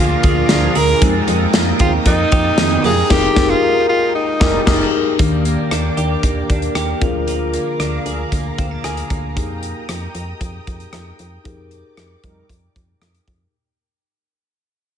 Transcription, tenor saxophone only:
0.00 F4
0.76 A#4
1.81 F4
2.07 D#4
2.85 G#4
3.11 G4
3.50 F4
3.89 F4
4.15 D#4

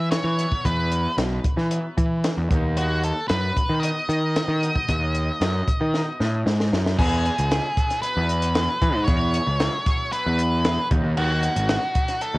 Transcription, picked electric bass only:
Already playing: E3
0.24 E3
0.65 E2
1.17 B1
1.57 E3
1.97 E3
2.37 E2
2.50 D#2
3.30 F#2
3.69 D#3
4.09 D#3
4.48 D#3
4.89 D#2
5.41 F#2
5.81 D#3
6.20 A2
6.46 G#2
6.73 F#2
6.98 E2
7.39 C#2
8.17 E2
8.82 E3
8.95 G#2
9.08 E2
9.47 C#2
10.26 E2
10.91 D#2
11.04 D#2
11.17 D#2
11.56 G#1
12.34 D#2

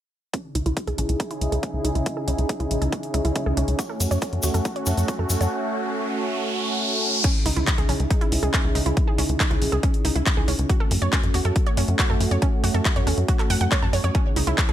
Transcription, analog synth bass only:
0.55 C#2
0.66 C#2
0.88 C#2
0.98 B1
1.09 C#2
1.41 C#2
1.52 C#2
1.74 C#2
1.85 C#2
1.95 C#2
2.28 C#2
2.38 C#2
2.60 C#2
2.71 B1
2.82 C#2
3.14 C#2
3.25 C#2
3.46 C#2
3.57 C#2
3.68 C#2
4.00 F#2
4.11 F#2
4.33 F#2
4.44 E2
4.54 F#2
4.87 F#2
4.97 F#2
5.19 F#2
5.30 F#2
5.41 F#2
7.46 C#2
7.57 C#2
7.78 C#2
7.89 B1
8.00 C#2
8.32 C#2
8.43 C#2
8.64 C#2
8.75 C#2
8.86 C#2
9.18 C#2
9.29 C#2
9.51 C#2
9.62 B1
9.72 C#2
10.05 C#2
10.16 C#2
10.37 C#2
10.48 C#2
10.59 C#2
10.91 F#2
11.02 F#2
11.23 F#2
11.34 E2
11.45 F#2
11.77 F#2
11.88 F#2
12.10 F#2
12.20 F#2
12.31 F#2
12.64 F#2
12.74 F#2
12.96 F#2
13.07 E2
13.18 F#2
13.50 F#2
13.61 F#2
13.82 F#2
13.93 F#2
14.04 F#2
14.36 C#2
14.47 C#2
14.69 C#2

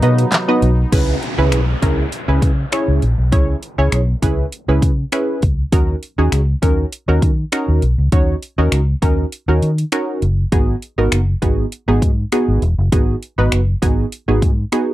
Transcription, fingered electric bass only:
0.03 B2
0.62 B1
0.92 C#2
1.38 C#2
1.52 B1
1.82 C#2
2.28 C#2
2.42 C#3
2.88 C#2
3.02 A#1
3.18 B1
3.32 C#2
3.78 C#2
3.92 B1
4.22 C#2
4.68 C#2
4.82 C#3
5.43 C#2
5.73 D#2
6.18 D#2
6.32 C#2
6.63 D#2
7.08 D#2
7.22 D#3
7.68 D#2
7.82 B1
7.98 C#2
8.12 D#2
8.58 D#2
8.72 C#2
9.03 D#2
9.48 D#2
9.62 D#3
10.22 F#1
10.52 G#1
10.98 G#1
11.12 F#1
11.42 G#1
11.88 G#1
12.02 G#2
12.48 G#1
12.62 E1
12.78 F#1
13.38 G#1
13.52 F#1
13.82 G#1
14.28 G#1
14.42 G#2

